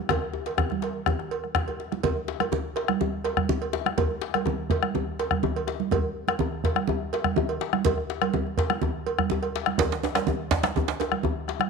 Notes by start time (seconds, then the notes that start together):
0.09 bombo rim, bombo low, cowbell, djembe slap, high conga, djembe bass, low conga
0.22 bombo rim, djembe slap
0.33 djembe tone
0.46 cowbell, djembe slap
0.58 bombo rim, bombo low, djembe bass, low conga
0.70 bombo rim, djembe tone, high conga
0.82 bombo rim, cowbell, djembe slap
1.06 bombo rim, bombo low, djembe bass, low conga
1.19 bombo rim, djembe tone
1.31 cowbell
1.44 bombo rim, high conga
1.55 bombo rim, bombo low, djembe bass, low conga
1.68 cowbell, high conga, djembe bass
1.80 djembe slap
1.92 bombo rim, djembe slap, high conga
2.03 bombo rim, bombo low, cowbell, djembe tone, djembe bass, low conga
2.17 high conga
2.28 djembe slap
2.40 bombo rim, cowbell, high conga
2.52 djembe tone, djembe bass, low conga
2.76 cowbell, djembe slap
2.88 bombo rim, high conga
3.01 djembe tone, low conga, djembe bass
3.24 cowbell, djembe slap
3.37 bombo rim, bombo low, high conga
3.49 djembe slap, high conga, djembe tone, low conga, djembe bass
3.62 cowbell
3.73 bombo rim, djembe slap, high conga
3.86 bombo rim, high conga
3.98 bombo rim, bombo low, cowbell, djembe tone, low conga, djembe bass
4.11 high conga
4.22 djembe slap
4.34 bombo rim, cowbell, high conga
4.46 djembe tone, djembe bass, low conga
4.70 bombo low, cowbell, djembe slap
4.83 bombo rim, high conga
4.95 djembe tone, low conga, djembe bass
5.19 cowbell, djembe slap
5.31 bombo rim, bombo low, high conga
5.43 djembe slap, high conga, djembe tone, low conga, djembe bass
5.56 cowbell
5.67 bombo rim, djembe slap, high conga
5.80 high conga
5.91 bombo rim, bombo low, cowbell, djembe tone, low conga, djembe bass
6.04 high conga
6.28 bombo rim, cowbell, high conga
6.39 djembe tone, low conga, djembe bass
6.64 bombo low, cowbell, djembe slap
6.76 bombo rim, high conga
6.88 djembe tone, low conga, djembe bass
7.13 cowbell, djembe slap
7.24 bombo rim, bombo low, high conga
7.36 djembe slap, high conga, djembe tone, low conga, djembe bass
7.49 cowbell
7.60 bombo rim, djembe slap, high conga
7.73 bombo rim, high conga
7.85 bombo low, cowbell, high conga, djembe tone, low conga, djembe bass
7.98 bombo rim
8.10 bombo rim, djembe slap
8.22 bombo rim, cowbell, high conga
8.34 bombo rim, djembe tone, low conga, djembe bass
8.47 djembe slap
8.57 bombo low, cowbell, djembe slap
8.70 bombo rim, high conga
8.82 djembe tone, low conga, djembe bass
9.06 cowbell, high conga
9.18 bombo rim, bombo low, high conga
9.30 djembe tone, low conga, djembe bass
9.43 bombo rim, cowbell
9.56 djembe slap
9.66 bombo rim, djembe slap, high conga
9.78 bombo rim, bombo low, cowbell, djembe slap, djembe tone, low conga, djembe bass
9.91 djembe slap, high conga
10.03 djembe slap, djembe tone
10.15 bombo rim, cowbell, djembe slap, high conga
10.27 djembe tone, low conga, djembe bass
10.51 bombo low, djembe slap
10.52 djembe slap
10.63 bombo rim, djembe slap, high conga
10.76 djembe tone, low conga, djembe bass
10.88 djembe slap
11.00 cowbell, djembe slap, djembe tone
11.12 bombo rim, high conga
11.23 djembe slap, high conga, djembe tone, low conga, djembe bass
11.48 bombo rim, djembe slap, high conga
11.60 bombo rim, high conga